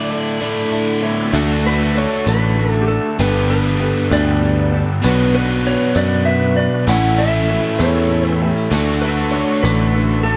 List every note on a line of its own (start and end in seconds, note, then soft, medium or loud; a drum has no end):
0.00 0.38 A2 medium
0.00 0.39 D3 medium
0.00 0.39 A3 medium
0.00 0.39 D4 loud
0.00 0.39 E4 medium
0.00 0.10 A4 medium
0.00 0.69 D5 medium
0.09 0.41 A3 medium
0.09 0.40 D4 medium
0.09 0.63 E4 medium
0.09 0.40 E4 medium
0.09 0.64 A4 medium
0.09 0.39 A4 medium
0.09 0.63 E5 medium
0.41 1.03 A2 medium
0.41 1.03 D3 medium
0.41 1.02 A3 medium
0.41 1.01 D4 medium
0.41 1.00 E4 medium
0.41 0.99 A4 medium
0.72 0.99 E4 medium
0.72 0.99 A4 medium
0.72 0.99 D5 medium
0.72 0.86 A5 medium
0.89 1.02 F#5 medium
1.00 1.26 G3 medium
1.00 1.32 A3 soft
1.00 1.32 D4 medium
1.00 1.33 E4 medium
1.00 1.33 A4 medium
1.00 1.34 A4 medium
1.00 1.34 C#5 medium
1.00 1.31 E5 medium
1.06 1.27 A3 medium
1.06 1.28 B3 medium
1.11 1.30 C4 medium
1.15 1.32 D4 medium
1.15 1.33 E4 medium
1.21 1.35 F4 medium
1.21 1.36 G4 medium
1.25 1.33 A4 medium
1.25 1.38 B4 medium
1.31 2.05 D2 loud
1.31 1.64 D3 medium
1.31 1.64 A3 medium
1.31 1.61 A3 medium
1.31 3.17 A3 medium
1.31 1.64 D4 medium
1.31 3.17 D4 medium
1.31 1.61 D4 medium
1.31 1.63 F#4 medium
1.31 3.18 F#4 medium
1.31 1.61 F#4 medium
1.31 3.17 A4 medium
1.31 1.62 A4 loud
1.31 1.61 A4 loud
1.31 1.40 C5 medium
1.31 tambourine medium
1.63 1.92 A3 medium
1.63 1.92 D4 medium
1.63 1.94 D4 soft
1.63 1.95 F#4 soft
1.63 1.92 F#4 medium
1.63 1.95 A4 medium
1.63 1.92 B4 medium
1.63 1.94 B4 medium
1.81 tambourine soft
1.94 2.26 A3 medium
1.94 2.49 A3 medium
1.94 2.25 D4 medium
1.94 2.49 D4 medium
1.94 2.25 F#4 medium
1.94 2.50 F#4 medium
1.94 2.24 A4 medium
1.98 2.50 A4 medium
1.98 2.26 C#5 medium
2.25 2.98 A1 loud
2.25 2.58 D3 medium
2.25 2.55 A3 medium
2.25 2.56 D4 medium
2.25 2.57 F#4 medium
2.25 2.57 A4 medium
2.25 2.71 B4 medium
2.25 tambourine loud
2.56 2.88 A3 medium
2.56 2.84 A3 medium
2.56 2.88 D4 medium
2.56 2.85 D4 medium
2.56 2.88 F#4 medium
2.56 2.85 F#4 medium
2.56 2.87 A4 medium
2.56 2.85 A4 medium
2.71 2.84 A4 medium
2.82 2.88 G4 medium
2.88 3.20 A3 medium
2.88 3.18 D4 medium
2.88 3.19 D4 soft
2.88 3.20 F#4 medium
2.88 3.19 A4 medium
2.88 3.20 A4 medium
2.88 3.18 A4 medium
3.19 3.91 G1 loud
3.19 5.02 G2 medium
3.19 5.01 D3 medium
3.19 3.50 G3 medium
3.19 3.45 B3 medium
3.19 3.50 B3 medium
3.19 5.02 B3 medium
3.19 5.02 D4 medium
3.19 3.46 D4 medium
3.19 3.50 D4 medium
3.19 5.02 G4 medium
3.19 3.46 G4 medium
3.19 3.50 G4 medium
3.19 5.02 A4 medium
3.19 3.46 A4 medium
3.19 3.48 A4 medium
3.19 3.49 B4 loud
3.19 tambourine medium
3.49 3.76 B3 medium
3.49 3.76 D4 medium
3.49 3.81 D4 soft
3.49 3.76 G4 medium
3.49 3.81 G4 soft
3.49 3.80 A4 medium
3.49 3.76 B4 medium
3.49 4.08 B4 loud
3.65 tambourine soft
3.79 4.33 B3 medium
3.79 4.12 B3 medium
3.79 4.33 D4 medium
3.79 4.11 D4 medium
3.79 4.33 G4 medium
3.79 4.34 A4 medium
3.83 4.11 G4 medium
3.83 4.10 A4 medium
4.11 4.83 D2 loud
4.11 4.43 G3 medium
4.11 4.40 B3 medium
4.11 4.41 D4 medium
4.11 4.42 G4 medium
4.11 4.42 A4 medium
4.11 4.77 D5 medium
4.11 tambourine loud
4.41 4.68 B3 medium
4.41 4.73 B3 medium
4.41 4.68 D4 medium
4.41 4.73 D4 medium
4.41 4.68 G4 medium
4.41 4.73 G4 medium
4.41 4.69 A4 medium
4.41 4.71 A4 medium
4.71 5.02 B3 medium
4.71 5.02 D4 medium
4.71 5.04 D4 soft
4.71 5.03 G4 medium
4.71 5.04 G4 medium
4.71 5.03 A4 medium
4.71 5.04 A4 medium
5.03 5.75 B1 loud
5.03 5.35 B2 medium
5.03 5.35 F#3 medium
5.03 5.30 B3 medium
5.03 5.35 B3 medium
5.03 6.87 B3 medium
5.03 5.30 D4 medium
5.03 5.35 D4 medium
5.03 6.87 D4 medium
5.03 5.30 F#4 medium
5.03 5.34 F#4 medium
5.03 6.87 F#4 medium
5.03 5.30 B4 medium
5.03 6.87 B4 medium
5.03 5.33 B4 loud
5.03 tambourine medium
5.35 5.61 B3 medium
5.35 5.64 B3 soft
5.35 5.61 D4 medium
5.35 5.65 D4 medium
5.35 5.66 F#4 medium
5.35 5.61 F#4 medium
5.35 5.61 A4 medium
5.35 5.65 B4 medium
5.35 5.63 B4 medium
5.49 tambourine soft
5.65 6.18 B3 medium
5.65 5.96 B3 medium
5.65 6.18 D4 medium
5.65 5.95 D4 medium
5.65 6.18 F#4 medium
5.65 5.95 F#4 medium
5.65 6.18 B4 medium
5.65 5.95 B4 medium
5.65 5.97 C#5 medium
5.95 6.67 F#2 loud
5.95 6.28 B2 medium
5.95 6.27 F#3 medium
5.95 6.26 B3 medium
5.95 6.27 D4 medium
5.95 6.27 F#4 medium
5.95 6.27 B4 medium
5.95 6.25 D5 medium
5.95 tambourine medium
6.25 6.53 B3 medium
6.25 6.58 B3 medium
6.25 6.53 D4 medium
6.25 6.57 D4 medium
6.25 6.53 F#4 medium
6.25 6.57 F#4 medium
6.25 6.53 B4 medium
6.25 6.58 E5 loud
6.30 6.55 B4 medium
6.56 6.88 B3 medium
6.56 6.88 B3 soft
6.56 6.87 D4 medium
6.56 6.88 D4 medium
6.56 6.88 F#4 medium
6.56 6.88 B4 medium
6.56 6.85 D5 loud
6.56 6.88 D5 medium
6.86 7.59 A1 loud
6.86 7.18 A2 medium
6.86 7.19 E3 medium
6.86 8.69 A3 medium
6.86 7.14 A3 medium
6.86 7.19 A3 medium
6.86 7.14 C#4 medium
6.86 8.70 C#4 medium
6.86 7.19 C#4 medium
6.86 7.14 E4 medium
6.86 8.70 E4 medium
6.86 7.18 E4 medium
6.86 8.68 A4 medium
6.86 7.14 A4 medium
6.86 7.17 A4 medium
6.86 7.20 F#5 loud
6.86 tambourine medium
7.17 7.44 A3 medium
7.17 7.48 A3 soft
7.17 7.45 C#4 medium
7.17 7.48 C#4 soft
7.17 7.45 E4 medium
7.17 7.50 E4 medium
7.17 7.49 A4 medium
7.17 7.45 A4 medium
7.17 7.78 E5 loud
7.17 tambourine soft
7.33 tambourine soft
7.50 7.80 A3 medium
7.50 8.02 A3 medium
7.50 7.79 C#4 medium
7.50 8.03 C#4 medium
7.50 8.03 E4 medium
7.50 7.79 E4 medium
7.50 8.03 F#4 medium
7.50 7.79 A4 medium
7.79 8.51 E2 loud
7.79 8.12 A2 medium
7.79 8.11 E3 medium
7.79 8.09 A3 medium
7.79 8.10 C#4 medium
7.79 8.11 E4 medium
7.79 8.11 A4 medium
7.79 8.28 C#5 medium
7.79 tambourine medium
8.10 8.41 A3 medium
8.10 8.37 A3 medium
8.10 8.37 C#4 medium
8.10 8.41 C#4 medium
8.10 8.37 E4 medium
8.10 8.41 E4 medium
8.10 8.37 A4 medium
8.10 8.40 A4 medium
8.28 8.44 B4 medium
8.41 8.70 A3 medium
8.41 8.71 A3 soft
8.41 8.72 C#4 medium
8.41 8.72 C#4 soft
8.41 8.72 E4 medium
8.41 8.72 G4 medium
8.41 8.72 A4 medium
8.57 tambourine soft
8.70 9.43 D2 loud
8.70 9.03 D3 medium
8.70 10.37 A3 medium
8.70 8.98 A3 medium
8.70 9.03 A3 medium
8.70 10.37 D4 medium
8.70 8.99 D4 medium
8.70 9.03 D4 medium
8.70 10.37 F#4 medium
8.70 8.99 F#4 medium
8.70 9.02 F#4 medium
8.70 10.37 A4 medium
8.70 8.99 A4 medium
8.70 tambourine medium
8.74 9.01 A4 loud
9.02 9.29 A3 medium
9.02 9.29 D4 medium
9.02 9.32 D4 soft
9.02 9.34 F#4 soft
9.02 9.30 F#4 medium
9.02 9.33 A4 medium
9.02 9.34 B4 medium
9.02 9.30 B4 medium
9.19 tambourine soft
9.31 9.86 A3 medium
9.31 9.63 A3 medium
9.31 9.86 D4 medium
9.31 9.63 D4 medium
9.31 9.86 F#4 medium
9.31 9.63 F#4 medium
9.31 9.86 A4 medium
9.31 9.62 A4 medium
9.31 9.64 C#5 medium
9.63 10.35 A1 loud
9.63 9.95 D3 medium
9.63 9.92 A3 medium
9.63 9.93 D4 medium
9.63 9.94 F#4 medium
9.63 9.94 A4 medium
9.63 10.23 B4 medium
9.63 tambourine loud
9.94 10.25 A3 medium
9.94 10.21 A3 medium
9.94 10.25 D4 medium
9.94 10.21 D4 medium
9.94 10.24 F#4 medium
9.94 10.21 F#4 medium
9.94 10.21 A4 medium
9.94 10.23 A4 medium
10.23 10.37 A3 medium
10.23 10.37 D4 medium
10.23 10.37 D4 soft
10.23 10.37 F#4 medium
10.23 10.37 A4 medium